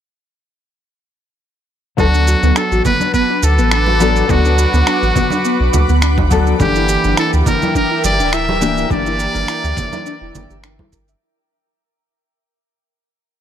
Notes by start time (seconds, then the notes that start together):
1.97 D2 F#3 B3 D4 F#4 A4 B4 F#5 A5 D6, kick, high conga, shaker
2.14 D4, shaker
2.27 F#4, shaker
2.43 D2 B3, high conga, shaker
2.56 D4 A4, finger snap, shaker
2.72 A1 F#4, shaker
2.85 B3 B4, kick, low conga, shaker
3.00 D4, high conga, shaker
3.14 B3 B4, kick, shaker
3.30 D4
3.43 D2 F#4 A4, high conga, shaker
3.58 A1 B3, shaker
3.71 D4 A4, finger snap, shaker
3.86 F#4, high conga
4.00 F#3 B3 D4 A4, shaker
4.16 D4, shaker
4.28 D2 F#3 B3 D4 F#4 A4 B5, kick, high conga, shaker
4.45 D4, shaker
4.58 F#4, shaker
4.73 D2 B3, high conga, shaker
4.87 D4, finger snap, shaker
5.02 A1 F#4, shaker
5.16 B3, kick, low conga, shaker
5.30 D4, high conga, shaker
5.45 B3, shaker
5.60 B1 D4
5.73 D2 F#4, high conga, low conga, shaker
5.89 D2 B3, shaker
6.02 D4, finger snap, shaker
6.18 F#4, kick, high conga
6.30 F#3 B3 D4 A4, kick, shaker
6.47 D4, shaker
6.59 G1 E3 A#3 D4 G4 A#4 E5 G5, kick, high conga, shaker
6.75 E4, shaker
6.89 G4, shaker
7.04 G1 D4, high conga, shaker
7.17 E4 A4, finger snap, shaker
7.33 D2 G4, shaker
7.46 D4 A#4, kick, low conga, shaker
7.62 E4, high conga, shaker
7.75 D4 A#4, kick, shaker
7.91 E4
8.04 G1 G4 D5, high conga, shaker
8.20 D1 D4, shaker
8.33 E4 E5, finger snap, shaker
8.49 G4, high conga
8.61 E3 A#3 D4 G4, shaker
8.78 E4, shaker
8.89 G1 E3 A#3 D4 G4 D5, kick, high conga, shaker
9.06 E4, shaker
9.19 G4, shaker
9.34 G1 D4, high conga, shaker
9.48 E4, finger snap, shaker
9.64 D2 G4, shaker
9.77 D4, kick, low conga, shaker
9.93 E4, high conga, shaker
10.06 D4, shaker
10.21 E1 E4
10.35 G1 D4, high conga, low conga, shaker
10.50 G1 G4, shaker
10.64 D4, finger snap, shaker
10.79 E4, kick, high conga
10.93 A#4, kick, shaker
11.08 E5, shaker